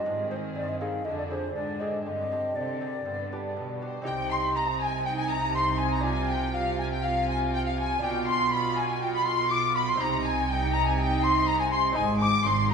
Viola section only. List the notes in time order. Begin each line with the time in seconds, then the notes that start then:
0.05 D#3
1.05 D3
1.55 D3
2.05 D3
2.56 D3
3.06 D3
4.06 D#4
5.06 D#4
5.55 D#4
6.05 F4
6.55 F4
7.05 F4
8.03 F4
8.53 F4
9.01 F4
9.51 F4
10.00 D#4
10.48 D#4
10.98 D#4
11.96 D#4
12.21 D#4
12.44 D#4
12.70 D#4